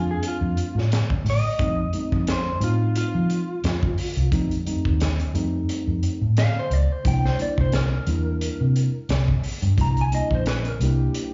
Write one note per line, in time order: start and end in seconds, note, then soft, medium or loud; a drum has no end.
0.00 0.15 F2 loud
0.00 0.73 G3 medium
0.00 0.73 A3 medium
0.00 0.73 C4 medium
0.00 0.73 D4 medium
0.11 0.24 G#4 medium
0.23 closed hi-hat medium
0.28 0.91 F4 medium
0.41 0.53 F2 medium
0.57 closed hi-hat soft
0.75 1.02 A2 medium
0.75 snare soft
0.92 snare loud
0.92 closed hi-hat medium
1.10 kick medium
1.25 1.40 A2 loud
1.25 open hi-hat medium
1.30 2.27 D#5 loud
1.59 1.86 F2 medium
1.59 1.81 G3 medium
1.59 1.81 A3 medium
1.59 1.82 C4 medium
1.59 1.82 D#4 medium
1.59 kick loud
1.59 closed hi-hat medium
1.93 2.36 G3 medium
1.93 2.36 A3 medium
1.93 2.36 C4 medium
1.93 2.36 D#4 medium
1.93 closed hi-hat medium
2.12 2.51 F2 medium
2.12 kick medium
2.27 snare loud
2.27 closed hi-hat medium
2.31 2.62 C5 medium
2.61 3.02 A2 medium
2.61 3.46 G3 medium
2.61 3.46 A3 medium
2.61 3.46 C4 medium
2.61 3.46 D#4 medium
2.61 2.96 F4 medium
2.61 closed hi-hat medium
2.96 4.29 F4 medium
2.96 closed hi-hat medium
3.15 3.41 F3 medium
3.30 closed hi-hat medium
3.64 3.91 F2 medium
3.64 snare loud
3.64 closed hi-hat medium
3.83 kick medium
3.98 open hi-hat medium
4.17 4.29 C2 medium
4.17 closed hi-hat soft
4.31 4.74 F2 medium
4.31 4.54 G3 medium
4.31 4.54 A3 medium
4.31 4.54 C4 medium
4.31 4.55 D#4 medium
4.31 kick loud
4.31 closed hi-hat medium
4.51 closed hi-hat soft
4.65 5.08 G3 medium
4.65 5.09 A3 medium
4.65 5.09 C4 medium
4.65 5.09 D#4 medium
4.65 closed hi-hat medium
4.85 5.24 D#2 medium
4.85 kick medium
5.00 snare loud
5.00 closed hi-hat medium
5.19 closed hi-hat soft
5.34 5.61 F2 medium
5.34 6.19 G3 medium
5.34 6.19 A3 medium
5.34 6.19 C4 medium
5.34 6.20 D#4 medium
5.34 closed hi-hat medium
5.69 closed hi-hat medium
5.87 5.99 F2 medium
6.03 closed hi-hat medium
6.21 6.48 A2 medium
6.37 6.56 F5 loud
6.37 snare loud
6.37 closed hi-hat medium
6.59 6.73 C5 medium
6.70 6.85 C#2 medium
6.70 6.92 D5 medium
6.70 closed hi-hat medium
6.92 7.06 C5 medium
7.04 7.32 C2 medium
7.04 7.27 G3 medium
7.04 7.27 A#3 medium
7.04 7.27 D4 medium
7.04 7.27 E4 medium
7.04 7.25 G5 medium
7.04 kick loud
7.04 closed hi-hat medium
7.25 7.39 C5 medium
7.25 snare soft
7.38 7.81 G3 medium
7.38 7.81 A#3 medium
7.38 7.81 D4 medium
7.38 7.82 E4 medium
7.38 7.59 D5 medium
7.38 closed hi-hat medium
7.58 7.97 C2 medium
7.58 7.74 C5 medium
7.58 kick medium
7.72 9.07 A#4 medium
7.72 snare loud
7.72 closed hi-hat medium
8.07 8.49 E2 loud
8.07 8.92 G3 medium
8.07 8.92 A#3 medium
8.07 8.92 D4 medium
8.07 8.93 E4 medium
8.07 closed hi-hat medium
8.41 closed hi-hat medium
8.61 8.87 C3 medium
8.76 closed hi-hat medium
9.09 9.36 C2 medium
9.09 snare loud
9.09 closed hi-hat medium
9.28 kick medium
9.43 open hi-hat medium
9.62 9.74 G2 loud
9.62 closed hi-hat soft
9.77 10.19 C2 loud
9.77 10.00 G3 medium
9.77 10.00 A#3 medium
9.77 10.00 D4 medium
9.77 10.01 E4 medium
9.77 kick loud
9.77 closed hi-hat medium
9.81 9.98 A#5 medium
9.97 closed hi-hat soft
10.01 10.14 G#5 medium
10.12 10.54 G3 medium
10.12 10.54 A#3 medium
10.12 10.55 D4 medium
10.12 10.55 E4 medium
10.12 10.32 D#5 medium
10.12 closed hi-hat medium
10.30 10.69 A#1 medium
10.30 kick medium
10.35 10.47 C5 medium
10.46 10.68 B4 medium
10.46 snare loud
10.46 closed hi-hat medium
10.65 10.84 A#4 medium
10.65 closed hi-hat soft
10.80 11.07 C2 medium
10.80 11.34 G3 medium
10.80 11.34 A#3 medium
10.80 11.34 D4 medium
10.80 11.34 E4 medium
10.80 11.34 G4 medium
10.80 closed hi-hat medium
11.14 closed hi-hat medium